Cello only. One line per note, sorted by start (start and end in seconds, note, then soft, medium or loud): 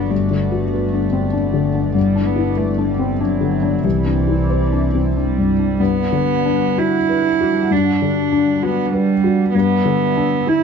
0.00 0.12 B3 soft
0.10 1.96 A3 soft
1.96 2.27 G3 soft
2.26 2.59 B3 soft
2.58 2.88 A3 soft
2.89 3.22 G3 soft
3.20 3.86 F#3 soft
3.85 5.15 E3 soft
5.15 5.82 G3 soft
5.80 6.80 B3 medium
6.79 7.73 E4 medium
7.72 8.64 D4 medium
8.63 8.93 B3 medium
8.94 9.53 G3 medium
9.54 10.50 B3 medium
10.48 10.63 E4 medium